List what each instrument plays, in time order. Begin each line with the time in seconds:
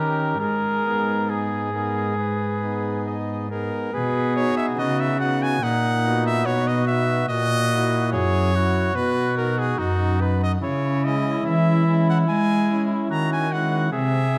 Already playing: pipe organ D#3 C#4 D#4 G4, cello D#3, trumpet G4, oboe A#4
0.40 cello G#2, pipe organ G#2 G#3, trumpet G#4, oboe A#4
0.85 pipe organ B3 D#4 G#4
1.29 oboe G#4, trumpet G#4
1.73 pipe organ B3 D#4 G#4, trumpet A#4
2.19 trumpet B4
2.63 pipe organ B3 D#4 G#4
3.07 trumpet D#5
3.51 pipe organ B3 D#4 G#4, trumpet A#4
3.94 cello B2, pipe organ B2, oboe G#4, trumpet B4
4.36 pipe organ B3 D#4 F#4, trumpet C#5
4.57 trumpet E5
4.78 cello C#3, pipe organ C#3, oboe F#4, trumpet D#5
5.00 trumpet E5
5.20 pipe organ B3 D#4 F#4, trumpet F#5
5.43 trumpet G#5
5.62 cello A#2, pipe organ A#2, oboe D#4, trumpet F#5
6.05 pipe organ B3 D#4 F#4
6.26 trumpet E5
6.46 cello B2, pipe organ B2, oboe F#4, trumpet C#5
6.67 trumpet D#5
6.87 pipe organ B3 D#4 F#4, trumpet E5
7.29 cello A#2, pipe organ A#2, oboe F#4, trumpet D#5
7.73 pipe organ E4 F#4
8.13 pipe organ F#2, cello F#2, oboe G#4, trumpet C#5
8.55 pipe organ E4 F#4, oboe F#4
8.95 cello B2, pipe organ B2, trumpet B4
9.37 pipe organ D#4 F#4, trumpet A#4
9.59 trumpet G#4
9.79 pipe organ F#2, cello F#2, oboe D#4, trumpet F#4
10.21 pipe organ D#4 F#4, trumpet B4
10.43 trumpet D#5
10.62 pipe organ C#3, cello C#3, oboe E4, trumpet C#5
11.04 pipe organ G#3 C#4 E4, trumpet D#5
11.45 pipe organ E3, cello E3, trumpet E5
11.88 pipe organ G#3 C#4 E4
12.10 trumpet F#5
12.29 cello G#3, pipe organ G#3, trumpet G#5
12.70 pipe organ G#3 C#4 E4
13.10 cello D#3, pipe organ D#3, oboe F#4, trumpet A#5
13.33 trumpet G#5
13.52 pipe organ G#3 C#4 E4, trumpet F#5
13.92 pipe organ C3, cello C3, oboe G#4, trumpet E5
14.34 pipe organ G#3 D#4 F#4